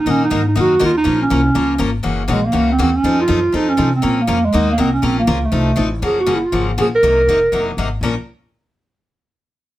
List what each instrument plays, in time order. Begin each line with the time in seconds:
0.00 clarinet D#4
0.06 upright bass A#2, steel-string acoustic guitar D#3 A#3 D#4 F#4 A#4
0.10 clarinet C#4
0.25 clarinet D#4
0.30 upright bass G#2, steel-string acoustic guitar D#3 A#3 D#4 F#4 A#4
0.48 clarinet D#4
0.55 upright bass F#2, steel-string acoustic guitar D#3 A#3 D#4 F#4 A#4
0.60 clarinet F#4
0.79 upright bass D#2, steel-string acoustic guitar D#3 A#3 D#4 F#4 A#4
0.85 clarinet F4
0.97 clarinet D#4
1.04 upright bass A#1, steel-string acoustic guitar F3 A#3 C#4 F4 A#4
1.22 clarinet C#4
1.30 upright bass C2, steel-string acoustic guitar F3 A#3 C#4 F4 A#4
1.54 upright bass C#2, steel-string acoustic guitar F3 A#3 C#4 F4 A#4
1.78 upright bass G#1, steel-string acoustic guitar F3 A#3 C#4 F4 A#4
2.03 upright bass F#1, steel-string acoustic guitar C#3 E3 A#3 C#4 F#4
2.28 upright bass A#1, steel-string acoustic guitar C#3 E3 A#3 C#4 F#4, clarinet G#3
2.46 clarinet A#3
2.52 upright bass C#2, steel-string acoustic guitar C#3 E3 A#3 C#4 F#4
2.72 clarinet C4
2.78 upright bass D#2, steel-string acoustic guitar C#3 E3 A#3 C#4 F#4, clarinet C4
2.97 clarinet C#4
3.03 upright bass F2, steel-string acoustic guitar F3 C4 D#4 A4
3.21 clarinet F4
3.28 upright bass F#2, steel-string acoustic guitar F3 C4 D#4 A4
3.52 upright bass F2, steel-string acoustic guitar F3 C4 D#4 A4, clarinet D#4
3.69 clarinet C#4
3.77 upright bass C3, steel-string acoustic guitar F3 C4 D#4 A4
3.95 clarinet C4
4.02 upright bass A#2, steel-string acoustic guitar F3 A#3 C#4 F4 A#4
4.21 clarinet A#3
4.27 upright bass F2, steel-string acoustic guitar F3 A#3 C#4 F4 A#4
4.45 clarinet G#3
4.53 upright bass D#2, steel-string acoustic guitar D#3 A#3 D#4 F#4 A#4
4.71 clarinet A#3
4.78 upright bass C2, steel-string acoustic guitar D#3 A#3 D#4 F#4 A#4, clarinet C4
4.93 clarinet C#4
5.02 upright bass A#1, steel-string acoustic guitar F3 A#3 C#4 F4 A#4, clarinet C4
5.19 clarinet A#3
5.27 upright bass C#2, steel-string acoustic guitar F3 A#3 C#4 F4 A#4
5.45 clarinet A3
5.52 upright bass C2, steel-string acoustic guitar F3 C4 D#4 A4
5.76 upright bass A1, steel-string acoustic guitar F3 C4 D#4 A4
6.02 upright bass F#1, steel-string acoustic guitar C#3 F3 A#3 C#4 F#4, clarinet G#4
6.20 clarinet F#4
6.26 steel-string acoustic guitar C#3 F3 A#3 C#4 F#4
6.35 clarinet E4
6.44 clarinet F4
6.52 upright bass G#1, steel-string acoustic guitar C#3 F3 A#3 C#4 F#4
6.77 upright bass A#1, steel-string acoustic guitar C#3 F3 A#3 C#4 F#4, clarinet G#4
6.95 clarinet A#4
7.03 upright bass C2, steel-string acoustic guitar C3 F#3 A#3 D#4 A#4
7.27 upright bass F1, steel-string acoustic guitar C3 F#3 A#3 D#4 A#4
7.52 upright bass F#1, steel-string acoustic guitar C3 F#3 A#3 D#4 A#4
7.77 upright bass G#1, steel-string acoustic guitar C3 F#3 A#3 D#4 A#4
8.01 upright bass A#1, steel-string acoustic guitar A#2 F3 A#3 C#4 F4 A#4